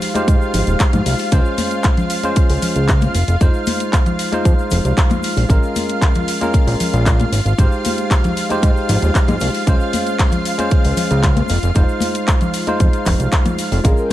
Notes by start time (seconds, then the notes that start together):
Already playing: G#3 D#4 F4 G4 C5 F5
0.02 open hi-hat, shaker
0.14 G#3 D#4 G4 C5, closed hi-hat, high conga, shaker
0.28 G#2, kick, closed hi-hat, shaker
0.41 shaker
0.54 G#1, open hi-hat, low conga, shaker
0.67 D#1, closed hi-hat, shaker
0.80 kick, clap, closed hi-hat, shaker
0.93 G#2, closed hi-hat, high conga, low conga, shaker
1.06 C2, open hi-hat, shaker
1.18 open hi-hat, shaker
1.31 C#2 G#3 C#4 F4 C5, kick, closed hi-hat, shaker
1.45 shaker
1.58 open hi-hat, high conga, shaker
1.71 closed hi-hat, shaker
1.83 kick, clap, closed hi-hat, shaker
1.97 closed hi-hat, low conga, shaker
2.10 open hi-hat, shaker
2.23 G#3 C#4 F4 C5, closed hi-hat, high conga, shaker
2.36 C#2, kick, closed hi-hat, shaker
2.50 C#2, open hi-hat, shaker
2.62 open hi-hat, low conga, shaker
2.75 C#2, closed hi-hat, shaker
2.88 kick, clap, closed hi-hat, shaker
3.01 closed hi-hat, high conga, shaker
3.14 F1, open hi-hat, shaker
3.28 F1, closed hi-hat, shaker
3.41 F1 G#3 D#4 F4 C5, kick, closed hi-hat, shaker
3.54 shaker
3.66 open hi-hat, high conga, shaker
3.80 closed hi-hat, shaker
3.93 kick, clap, closed hi-hat, shaker
4.06 closed hi-hat, low conga, shaker
4.19 open hi-hat, shaker
4.32 G#3 D#4 F4 C5, closed hi-hat, high conga, shaker
4.45 F2, kick, closed hi-hat, shaker
4.59 shaker
4.71 F1, open hi-hat, low conga, shaker
4.85 C2, closed hi-hat, shaker
4.97 kick, clap, closed hi-hat, shaker
5.10 closed hi-hat, high conga, low conga, shaker
5.23 open hi-hat, shaker
5.36 A#1, open hi-hat, shaker
5.49 A#1 G#3 C#4 F4 A#4 F5, kick, closed hi-hat, shaker
5.63 shaker
5.76 open hi-hat, high conga, shaker
5.89 closed hi-hat, shaker
6.01 kick, clap, closed hi-hat, shaker
6.14 closed hi-hat, low conga, shaker
6.28 open hi-hat, shaker
6.41 G#3 C#4 F4 A#4, closed hi-hat, high conga, shaker
6.54 A#1, kick, closed hi-hat, shaker
6.67 A#1, open hi-hat, shaker
6.80 open hi-hat, low conga, shaker
6.93 A#1, closed hi-hat, shaker
7.06 kick, clap, closed hi-hat, shaker
7.20 closed hi-hat, high conga, shaker
7.32 G#1, open hi-hat, shaker
7.45 G#1, closed hi-hat, shaker
7.58 G#1 G#3 D#4 G4 C5, kick, closed hi-hat, shaker
7.72 shaker
7.85 open hi-hat, high conga, shaker
7.98 closed hi-hat, shaker
8.11 kick, clap, closed hi-hat, shaker
8.24 closed hi-hat, low conga, shaker
8.37 open hi-hat, shaker
8.50 G#3 D#4 G4 C5, closed hi-hat, high conga, shaker
8.63 G#2, kick, closed hi-hat, shaker
8.77 shaker
8.89 G#1, open hi-hat, low conga, shaker
9.02 D#1, closed hi-hat, shaker
9.15 kick, clap, closed hi-hat, shaker
9.28 G#2, closed hi-hat, high conga, low conga, shaker
9.40 C2, open hi-hat, shaker
9.54 open hi-hat, shaker
9.67 C#2 G#3 C#4 F4 C5, kick, closed hi-hat, shaker
9.80 shaker
9.93 open hi-hat, high conga, shaker
10.07 closed hi-hat, shaker
10.19 kick, clap, closed hi-hat, shaker
10.32 closed hi-hat, low conga, shaker
10.45 open hi-hat, shaker
10.58 G#3 C#4 F4 C5, closed hi-hat, high conga, shaker
10.70 C#2, kick, closed hi-hat, shaker
10.84 C#2, open hi-hat, shaker
10.97 open hi-hat, low conga, shaker
11.11 C#2, closed hi-hat, shaker
11.23 kick, clap, closed hi-hat, shaker
11.37 closed hi-hat, high conga, shaker
11.48 F1, open hi-hat, shaker
11.63 F1, closed hi-hat, shaker
11.75 F1 G#3 D#4 F4 C5, kick, closed hi-hat, shaker
11.89 shaker
12.00 open hi-hat, high conga, shaker
12.15 closed hi-hat, shaker
12.28 kick, clap, closed hi-hat, shaker
12.41 closed hi-hat, low conga, shaker
12.54 open hi-hat, shaker
12.67 G#3 D#4 F4 C5, closed hi-hat, high conga, shaker
12.80 F2, kick, closed hi-hat, shaker
12.93 closed hi-hat, shaker
13.06 F1, kick, clap, open hi-hat, low conga, shaker
13.19 C2, closed hi-hat, shaker
13.32 kick, clap, closed hi-hat, shaker
13.45 closed hi-hat, high conga, low conga, shaker
13.59 open hi-hat, shaker
13.72 F1, open hi-hat, shaker
13.84 A#1 G#3 C#4 F4 G#4 A#4 G5, kick, closed hi-hat, shaker
13.97 A#4, shaker